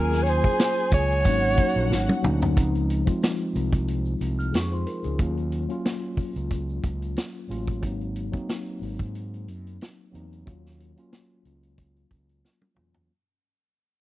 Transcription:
Already playing: fingered electric bass D#2, tine electric piano F#3 A#3 C#4 F4, string section G#4 G#5, alto saxophone A#4
0.12 snare, shaker
0.23 alto saxophone C#5, closed hi-hat
0.29 alto saxophone C5
0.44 kick, shaker
0.60 snare, closed hi-hat, shaker
0.79 shaker
0.92 fingered electric bass C#2, alto saxophone C#5, kick, closed hi-hat, shaker
1.12 shaker
1.24 fingered electric bass G#1, tine electric piano F#3 A#3 C#4 D#4, string section F#4 F#5, kick, closed hi-hat, shaker
1.43 shaker
1.57 tine electric piano F#3 A#3 C#4 D#4, muted fingered electric bass stroke, kick, closed hi-hat, shaker
1.76 fingered electric bass A#1, shaker
1.91 fingered electric bass G#1, snare, shaker
2.09 high tom, shaker
2.22 fingered electric bass D2, tine electric piano F#3 A#3 C#4 D#4, mid tom, shaker
2.41 floor tom, shaker
2.55 fingered electric bass C#2, tine electric piano F3 G#3 C4 D#4, kick, closed hi-hat, shaker
2.75 closed hi-hat, shaker
2.90 closed hi-hat
3.05 tine electric piano F3 G#3 C4 F4, kick, closed hi-hat, shaker
3.22 snare, closed hi-hat, shaker
3.40 shaker
3.55 fingered electric bass C2, closed hi-hat, shaker
3.73 kick, closed hi-hat, shaker
3.88 closed hi-hat, shaker
4.05 shaker
4.21 fingered electric bass C2, closed hi-hat, shaker
4.39 celesta F6, closed hi-hat, shaker
4.52 fingered electric bass F2, tine electric piano D#4 G#4, snare, closed hi-hat, shaker
4.57 celesta C#6
4.71 tine electric piano F4 C5, celesta C6, closed hi-hat, shaker
4.87 tine electric piano F4 A#4, closed hi-hat, shaker
5.04 fingered electric bass C#2, tine electric piano D#4 G#4, closed hi-hat, shaker
5.18 fingered electric bass D#2, tine electric piano F#3 A#3 C#4 F4, kick, closed hi-hat, shaker
5.37 closed hi-hat, shaker
5.52 closed hi-hat
5.68 tine electric piano F#3 A#3 C#4 F4, closed hi-hat, shaker
5.85 snare, closed hi-hat, shaker
6.04 shaker
6.17 muted fingered electric bass stroke, kick, open hi-hat, shaker
6.36 fingered electric bass C#2, closed hi-hat, shaker
6.51 kick, closed hi-hat, shaker
6.69 shaker
6.84 fingered electric bass C#2, kick, closed hi-hat, shaker
7.02 closed hi-hat, shaker
7.17 snare, closed hi-hat, shaker
7.35 closed hi-hat, shaker
7.48 fingered electric bass A1, tine electric piano F#3 A#3 C#4 F4, closed hi-hat, shaker
7.67 kick, closed hi-hat, shaker
7.81 fingered electric bass G#1, tine electric piano F#3 A#3 C4 D#4, kick, closed hi-hat
8.01 closed hi-hat
8.16 closed hi-hat
8.32 tine electric piano F#3 A#3 C4 D#4, kick, closed hi-hat
8.49 snare, closed hi-hat
8.67 closed hi-hat
8.81 fingered electric bass G#1, open hi-hat
8.99 fingered electric bass G#2, kick, closed hi-hat
9.15 closed hi-hat
9.34 closed hi-hat
9.48 fingered electric bass F#2, closed hi-hat
9.67 closed hi-hat
9.81 snare, closed hi-hat
10.12 fingered electric bass E2, tine electric piano F#3 A#3 C4 D#4, closed hi-hat
10.33 closed hi-hat
10.45 fingered electric bass D#2, tine electric piano F#3 A#3 C#4 F4, kick, closed hi-hat
10.66 snare
10.80 closed hi-hat
10.97 tine electric piano F#3 A#3 C#4 F4, closed hi-hat
11.13 snare, closed hi-hat
11.45 fingered electric bass C#2, closed hi-hat
11.63 closed hi-hat
11.78 kick, closed hi-hat
11.96 closed hi-hat
12.11 fingered electric bass C#2, kick, closed hi-hat
12.29 closed hi-hat
12.45 snare
12.61 high tom
12.75 fingered electric bass E2, tine electric piano F#3 A#3 C#4 F4, mid tom
12.94 floor tom

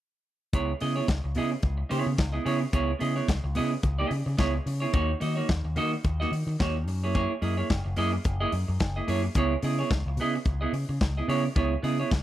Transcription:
0.53 picked electric bass C#2, clean electric guitar B3 E4 G#4 C#5, kick, closed hi-hat
0.80 picked electric bass C#3, clean electric guitar B3 E4 G#4 D#5, open hi-hat
0.96 clean electric guitar B3 E4 G#4 C#5
1.08 picked electric bass C#2, muted clean electric guitar stroke, kick, snare, closed hi-hat
1.24 picked electric bass C#2, muted clean electric guitar stroke
1.35 picked electric bass C#3, clean electric guitar B3 E4 G#4 D#5, open hi-hat
1.52 muted clean electric guitar stroke
1.63 picked electric bass C#2, muted clean electric guitar stroke, kick, closed hi-hat
1.78 muted clean electric guitar stroke
1.89 picked electric bass C#3, clean electric guitar B3 E4 G#4 C#5, open hi-hat
2.06 picked electric bass C#3, muted clean electric guitar stroke
2.18 picked electric bass C#2, muted clean electric guitar stroke, kick, snare, closed hi-hat
2.32 clean electric guitar B3 E4 G#4 D#5
2.45 picked electric bass C#3, clean electric guitar B3 E4 G#4 C#5, open hi-hat
2.60 muted clean electric guitar stroke
2.73 picked electric bass C#2, clean electric guitar B3 E4 G#4 C#5, kick, closed hi-hat
2.99 picked electric bass C#3, clean electric guitar B3 E4 G#4 D#5, open hi-hat
3.16 clean electric guitar B3 E4 G#4 C#5
3.28 picked electric bass C#2, muted clean electric guitar stroke, kick, snare, closed hi-hat
3.44 picked electric bass C#2, muted clean electric guitar stroke
3.55 picked electric bass C#3, clean electric guitar B3 E4 G#4 D#5, open hi-hat
3.73 muted clean electric guitar stroke
3.83 picked electric bass C#2, muted clean electric guitar stroke, kick, closed hi-hat
3.99 clean electric guitar B3 E4 G#4 D#5
4.11 picked electric bass C#3, muted clean electric guitar stroke, open hi-hat
4.26 picked electric bass C#3, muted clean electric guitar stroke
4.37 picked electric bass C#2, clean electric guitar B3 E4 G#4 C#5, kick, snare, closed hi-hat
4.54 muted clean electric guitar stroke
4.66 picked electric bass C#3, muted clean electric guitar stroke, open hi-hat
4.80 clean electric guitar B3 E4 G#4 C#5
4.93 picked electric bass D#2, clean electric guitar A#3 D#4 F#4 C#5, kick, closed hi-hat
5.20 picked electric bass D#3, clean electric guitar A#3 D#4 F#4 D#5, open hi-hat
5.36 clean electric guitar A#3 D#4 F#4 C#5
5.49 picked electric bass D#2, muted clean electric guitar stroke, kick, snare, closed hi-hat
5.64 picked electric bass D#2, muted clean electric guitar stroke
5.76 picked electric bass D#3, clean electric guitar A#3 D#4 F#4 D#5, open hi-hat
5.93 muted clean electric guitar stroke
6.04 picked electric bass D#2, muted clean electric guitar stroke, kick, closed hi-hat
6.20 clean electric guitar A#3 D#4 F#4 D#5, snare
6.32 picked electric bass D#3, muted clean electric guitar stroke, open hi-hat
6.47 picked electric bass D#3, muted clean electric guitar stroke
6.59 picked electric bass D#2, clean electric guitar A#3 D#4 F#4 C#5, kick, snare, closed hi-hat
6.76 muted clean electric guitar stroke
6.87 picked electric bass F#2, muted clean electric guitar stroke, open hi-hat
7.04 clean electric guitar A#3 E4 G#4 C#5
7.14 clean electric guitar A#3 E4 G#4 C#5, kick, closed hi-hat
7.42 picked electric bass F#2, clean electric guitar A#3 E4 G#4 D#5, open hi-hat
7.57 clean electric guitar A#3 E4 G#4 C#5
7.70 picked electric bass F#1, muted clean electric guitar stroke, kick, snare, closed hi-hat
7.85 picked electric bass F#1, muted clean electric guitar stroke
7.96 picked electric bass F#2, clean electric guitar A#3 E4 G#4 D#5, open hi-hat
8.12 muted clean electric guitar stroke
8.24 picked electric bass F#1, muted clean electric guitar stroke, kick, closed hi-hat
8.40 clean electric guitar A#3 E4 G#4 D#5
8.52 picked electric bass F#2, muted clean electric guitar stroke, open hi-hat
8.68 picked electric bass F#2, muted clean electric guitar stroke
8.79 picked electric bass F#1, muted clean electric guitar stroke, kick, snare, closed hi-hat
8.96 clean electric guitar A#3 E4 G#4 D#5
9.07 picked electric bass F#2, clean electric guitar A#3 E4 G#4 C#5, open hi-hat
9.23 muted clean electric guitar stroke
9.35 picked electric bass C#2, clean electric guitar B3 E4 G#4 C#5, kick, closed hi-hat
9.63 picked electric bass C#3, clean electric guitar B3 E4 G#4 D#5, open hi-hat
9.79 clean electric guitar B3 E4 G#4 C#5
9.91 picked electric bass C#2, kick, snare, closed hi-hat
10.06 picked electric bass C#2, muted clean electric guitar stroke
10.17 picked electric bass C#3, clean electric guitar B3 E4 G#4, open hi-hat
10.21 clean electric guitar D#5
10.35 muted clean electric guitar stroke
10.45 picked electric bass C#2, muted clean electric guitar stroke, kick, closed hi-hat
10.61 clean electric guitar B3 E4 G#4 D#5
10.73 picked electric bass C#3, muted clean electric guitar stroke, open hi-hat
10.89 picked electric bass C#3, muted clean electric guitar stroke
11.01 picked electric bass C#2, muted clean electric guitar stroke, kick, snare, closed hi-hat
11.17 clean electric guitar B3 E4 G#4 D#5
11.28 picked electric bass C#3, clean electric guitar B3 E4 G#4 C#5, open hi-hat
11.45 muted clean electric guitar stroke
11.56 picked electric bass C#2, clean electric guitar B3 E4 G#4 C#5, kick, closed hi-hat
11.83 picked electric bass C#3, clean electric guitar B3 E4 G#4 D#5, open hi-hat
12.00 clean electric guitar B3 E4 G#4 C#5
12.11 picked electric bass C#2, muted clean electric guitar stroke, kick, snare, closed hi-hat

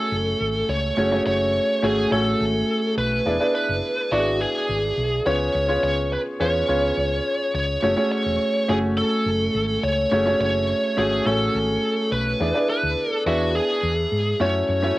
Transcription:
Already playing: grand piano A3 C#4 F#4 G#4 C#5 G#5, lead electric guitar A4
0.12 fingered electric bass F#1
0.40 fingered electric bass G#1
0.69 fingered electric bass C#2, lead electric guitar C#5
0.97 fingered electric bass F#1, grand piano A3 C#4 F#4 G#4 C#5
1.11 grand piano A3 C#4 F#4 G#4 C#5
1.26 fingered electric bass F#1, lead electric guitar C#5
1.82 fingered electric bass G#1, grand piano A3 C#4 F#4 G#4 C#5, lead electric guitar G#4
2.11 fingered electric bass A1, grand piano A3 C#4 F#4 C#5 G#5, lead electric guitar A4
2.40 fingered electric bass G#1
2.97 fingered electric bass B1, lead electric guitar B4
3.25 fingered electric bass E1, grand piano B3 D4 E4 G#4 D5
3.40 grand piano B3 D4 E4 G#4 D5
3.55 lead electric guitar B4
3.69 fingered electric bass F#1
4.11 fingered electric bass G#1, grand piano B3 D4 E4 F#4 D5, lead electric guitar F#4
4.19 grand piano G#4
4.41 lead electric guitar G#4
4.69 fingered electric bass G#1
4.97 fingered electric bass B1
5.25 fingered electric bass C#2, grand piano B3 C#4 F4 G#4 C#5, lead electric guitar C#5
5.55 fingered electric bass C#2
5.68 grand piano B3 C#4 F4 G#4 C#5
5.83 fingered electric bass C#2, lead electric guitar C#5
6.12 lead electric guitar B4
6.40 fingered electric bass E2, grand piano B3 C#4 F4 G#4 C#5, lead electric guitar C#5
6.68 fingered electric bass C#2, grand piano B3 C#4 F4 G#4 C#5
6.97 fingered electric bass C#2
7.54 fingered electric bass C#2, lead electric guitar C#5
7.83 fingered electric bass F#1, grand piano A3 C#4 F#4 G#4 C#5
7.97 grand piano A3 C#4 F#4 G#4 C#5
8.12 lead electric guitar C#5
8.26 fingered electric bass E1
8.68 fingered electric bass F#1, grand piano A3 C#4 F#4 C#5 G#5, lead electric guitar G#4
8.97 lead electric guitar A4
9.26 fingered electric bass F#1
9.54 fingered electric bass G#1
9.83 fingered electric bass C#2, lead electric guitar C#5
10.11 fingered electric bass F#1, grand piano A3 C#4 F#4 G#4 C#5
10.26 grand piano A3 C#4 F#4 G#4 C#5
10.40 fingered electric bass F#1, lead electric guitar C#5
10.97 fingered electric bass G#1, grand piano A3 C#4 F#4 G#4 C#5, lead electric guitar G#4
11.26 fingered electric bass A1, grand piano A3 C#4 F#4 C#5 G#5, lead electric guitar A4
11.54 fingered electric bass G#1
12.12 fingered electric bass B1, lead electric guitar B4
12.40 fingered electric bass E2, grand piano B3 D4 E4 G#4 D5
12.54 grand piano B3 D4 E4 G#4 D5
12.69 lead electric guitar B4
12.83 fingered electric bass D2
13.10 lead electric guitar A4
13.26 fingered electric bass E2, grand piano B3 D4 E4 G#4 E5, lead electric guitar F#4
13.55 lead electric guitar G#4
13.83 fingered electric bass E2
14.12 fingered electric bass G#2
14.40 fingered electric bass F#2, grand piano A3 C#4 E4 F#4 C#5, lead electric guitar C#5
14.69 fingered electric bass F#2
14.82 grand piano A3 C#4 E4 F#4 C#5

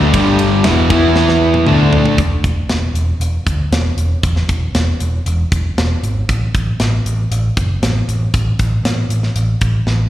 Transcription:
Already playing: picked electric bass D2, overdriven electric guitar D3 A3 D4
0.14 picked electric bass G1, overdriven electric guitar G2 D3 G3, kick, ride
0.39 ride
0.64 picked electric bass E1, overdriven electric guitar E2 B2 E3, snare, ride
0.90 picked electric bass E2, overdriven electric guitar E3 B3 E4, kick, ride
1.16 snare
1.28 snare
1.54 high tom
1.67 picked electric bass D2, overdriven electric guitar D3 A3 D4, mid tom
1.93 floor tom
2.06 floor tom
2.18 picked electric bass E1, kick, closed hi-hat
2.44 picked electric bass E1, kick, closed hi-hat
2.69 picked electric bass E1, snare, closed hi-hat
2.94 picked electric bass E1, closed hi-hat
3.20 picked electric bass E1, closed hi-hat
3.46 picked electric bass D2, kick, closed hi-hat
3.72 picked electric bass E1, snare, closed hi-hat
3.97 picked electric bass E1, closed hi-hat
4.23 picked electric bass E1, kick, closed hi-hat
4.36 snare
4.49 picked electric bass E1, kick, closed hi-hat
4.75 picked electric bass E1, snare, closed hi-hat
5.00 picked electric bass E1, closed hi-hat
5.26 picked electric bass E1, closed hi-hat
5.52 picked electric bass E1, kick, closed hi-hat
5.78 picked electric bass E1, snare, closed hi-hat
6.03 picked electric bass G#1, closed hi-hat
6.29 picked electric bass A1, kick, closed hi-hat
6.55 picked electric bass A1, kick, closed hi-hat
6.80 picked electric bass A1, snare, closed hi-hat
7.06 picked electric bass A1, closed hi-hat
7.31 picked electric bass A1, closed hi-hat
7.57 picked electric bass F#1, kick, closed hi-hat
7.82 picked electric bass A1, snare, closed hi-hat
8.09 picked electric bass A1, closed hi-hat
8.34 picked electric bass A1, kick, closed hi-hat
8.59 picked electric bass A1, kick, closed hi-hat
8.84 picked electric bass A1, snare, closed hi-hat
9.09 picked electric bass A1, closed hi-hat
9.23 snare
9.36 picked electric bass A1, closed hi-hat
9.61 picked electric bass A1, kick, closed hi-hat
9.87 picked electric bass A1, snare

